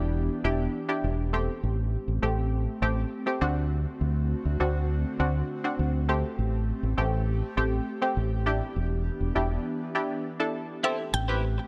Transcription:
0.00 0.28 E1 medium
0.00 1.31 E3 medium
0.00 1.31 B3 medium
0.00 0.32 D4 medium
0.00 1.31 D4 medium
0.00 0.32 E4 medium
0.00 0.32 G4 medium
0.00 3.37 G4 medium
0.44 0.66 E1 medium
0.44 0.80 D4 medium
0.44 0.80 E4 medium
0.44 0.80 G4 loud
0.89 1.24 D4 medium
0.89 1.24 E4 medium
0.89 1.24 G4 medium
1.04 1.47 E1 medium
1.33 2.04 A3 medium
1.33 6.05 A3 medium
1.33 2.04 C4 medium
1.33 8.42 C4 medium
1.33 2.04 G4 medium
1.63 1.96 A1 medium
2.08 2.19 A1 medium
2.22 2.66 A1 medium
2.22 2.69 A3 medium
2.22 2.70 C4 medium
2.22 2.70 G4 medium
2.82 3.04 A1 medium
2.82 3.17 A3 medium
2.82 3.17 C4 medium
2.82 3.17 G4 medium
3.26 3.41 A3 medium
3.26 3.40 C4 medium
3.26 3.42 G4 medium
3.41 3.85 D2 medium
3.41 6.06 D3 medium
3.41 4.36 C4 medium
3.41 4.37 D4 medium
3.41 6.06 F#4 medium
3.41 4.37 F#4 loud
4.01 4.33 D2 medium
4.45 4.56 D2 medium
4.60 5.04 D2 medium
4.60 5.07 C4 medium
4.60 5.07 D4 medium
4.60 5.07 F#4 medium
5.20 5.41 D2 loud
5.20 5.55 C4 medium
5.20 5.55 D4 medium
5.20 5.55 F#4 medium
5.64 5.99 C4 medium
5.64 5.99 D4 medium
5.64 6.00 F#4 medium
5.79 6.22 D2 medium
6.09 6.79 A3 medium
6.09 8.44 A3 medium
6.09 6.79 C4 medium
6.09 6.79 G4 medium
6.09 10.80 G4 medium
6.39 6.71 A1 medium
6.83 6.94 A1 medium
6.97 7.41 A1 medium
6.97 7.45 A3 medium
6.97 7.45 C4 medium
6.97 7.45 G4 medium
7.57 7.79 A1 medium
7.57 7.92 A3 medium
7.57 7.92 C4 medium
7.57 7.93 G4 medium
8.02 8.37 A3 medium
8.02 8.37 C4 medium
8.02 8.37 G4 medium
8.17 8.60 A1 medium
8.46 10.82 E3 medium
8.46 10.82 B3 medium
8.46 9.17 D4 medium
8.46 10.82 D4 medium
8.46 9.17 E4 medium
8.46 9.17 G4 loud
8.76 9.09 E1 medium
9.21 9.31 E1 medium
9.35 9.57 E1 medium
9.35 9.82 D4 medium
9.35 9.82 E4 medium
9.35 9.83 G4 medium
9.95 10.30 D4 medium
9.95 10.30 E4 medium
9.95 10.30 G4 medium
10.40 10.75 D4 medium
10.40 10.75 E4 medium
10.40 10.75 A4 medium
10.84 11.68 A3 medium
10.84 11.19 C4 medium
10.84 11.68 C4 medium
10.84 11.02 E4 medium
10.84 11.19 G4 medium
10.84 11.68 G4 medium
10.84 10.99 G4 medium
10.84 11.19 A4 medium
10.84 10.97 C5 medium
10.84 11.15 E5 medium
10.98 muted clean electric guitar stroke soft
11.13 11.57 A1 loud
11.13 11.68 G5 loud
11.13 muted clean electric guitar stroke soft
11.28 11.68 C4 medium
11.28 11.42 E4 medium
11.28 11.68 G4 medium
11.28 11.43 G4 medium
11.28 11.68 B4 medium
11.28 11.43 C5 medium
11.43 muted clean electric guitar stroke soft
11.58 muted clean electric guitar stroke soft

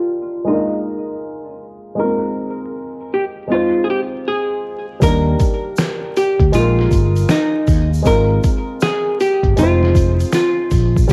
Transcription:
0.00 0.42 G3 medium
0.00 0.43 A#3 medium
0.00 0.44 D4 medium
0.00 0.44 D#4 medium
0.00 0.49 F4 medium
0.00 0.45 A#4 medium
0.44 1.94 G#3 medium
0.44 1.95 A#3 medium
0.44 0.55 D4 soft
0.44 1.57 D#4 medium
0.49 1.96 F4 medium
0.49 1.97 A#4 medium
0.54 1.97 D#4 medium
1.95 3.45 G#3 medium
1.95 2.06 A#3 soft
1.95 3.47 D#4 medium
1.99 3.48 C4 medium
1.99 3.48 F4 soft
1.99 3.09 A#4 loud
1.99 3.48 A#4 medium
3.14 3.24 G4 medium
3.48 4.98 G#3 medium
3.48 4.98 C4 medium
3.48 4.99 D#4 medium
3.52 3.85 F4 medium
3.52 5.00 F4 medium
3.52 5.01 C5 medium
3.84 3.88 G#4 medium
3.90 4.00 G4 medium
4.28 4.85 G#4 medium
5.00 5.34 D#2 loud
5.00 6.50 G3 medium
5.00 6.50 A#3 medium
5.00 6.51 D4 medium
5.00 6.17 A#4 loud
5.00 kick loud
5.00 closed hi-hat medium
5.00 shaker medium
5.05 6.52 D#4 medium
5.05 6.53 A#4 medium
5.40 kick medium
5.40 closed hi-hat medium
5.40 shaker soft
5.77 finger snap medium
5.77 snare loud
5.77 closed hi-hat medium
5.77 shaker medium
6.17 6.52 G4 medium
6.17 closed hi-hat medium
6.17 shaker soft
6.40 6.51 D2 medium
6.40 kick medium
6.40 closed hi-hat soft
6.52 6.86 A#1 loud
6.52 8.01 G#3 medium
6.52 8.03 A#3 medium
6.52 8.03 D#4 medium
6.52 7.30 F4 loud
6.52 closed hi-hat medium
6.52 shaker medium
6.57 8.04 F4 medium
6.57 8.05 A#4 medium
6.79 snare soft
6.91 7.24 G1 loud
6.91 kick medium
6.91 closed hi-hat medium
6.91 shaker soft
7.16 closed hi-hat soft
7.16 shaker soft
7.29 7.89 D#4 medium
7.29 finger snap medium
7.29 snare loud
7.29 closed hi-hat medium
7.29 shaker medium
7.67 8.00 D#2 medium
7.67 kick loud
7.67 open hi-hat soft
7.67 shaker soft
7.94 shaker medium
8.02 8.38 G#1 loud
8.02 9.53 G#3 medium
8.02 9.54 C4 medium
8.02 9.54 D#4 medium
8.02 kick loud
8.02 closed hi-hat medium
8.02 shaker medium
8.07 9.55 F4 medium
8.07 8.82 A#4 loud
8.07 9.56 A#4 medium
8.43 kick medium
8.43 closed hi-hat medium
8.43 shaker medium
8.81 9.20 G#4 loud
8.81 finger snap medium
8.81 snare loud
8.81 closed hi-hat medium
8.81 shaker medium
9.20 9.59 G4 medium
9.20 closed hi-hat medium
9.20 shaker soft
9.43 9.55 G1 medium
9.43 kick medium
9.43 closed hi-hat soft
9.56 10.23 F1 loud
9.56 11.06 G#3 medium
9.56 11.07 C4 medium
9.56 11.07 D#4 medium
9.56 10.33 F4 medium
9.56 closed hi-hat medium
9.56 shaker medium
9.61 11.08 F4 medium
9.61 11.09 C5 medium
9.83 snare soft
9.95 kick medium
9.95 closed hi-hat medium
9.95 shaker soft
10.20 closed hi-hat soft
10.20 shaker soft
10.32 11.06 F4 medium
10.32 finger snap medium
10.32 snare loud
10.32 closed hi-hat medium
10.32 shaker medium
10.71 11.04 A#1 medium
10.71 kick loud
10.71 open hi-hat soft
10.71 shaker soft
10.97 kick medium
10.97 shaker medium
11.08 11.13 D#2 loud
11.08 11.13 G3 medium
11.08 11.13 A#3 medium
11.08 kick loud
11.08 closed hi-hat medium
11.08 shaker medium

